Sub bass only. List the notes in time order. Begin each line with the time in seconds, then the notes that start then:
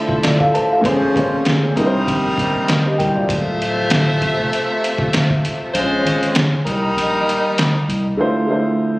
0.09 F1
0.84 A#1
1.16 G#1
1.76 C2
2.08 A#1
3.00 C2
3.29 D1
4.39 F1
4.98 F1
5.74 A#1
6.05 G#1
6.66 C2
6.97 A#1
7.88 C2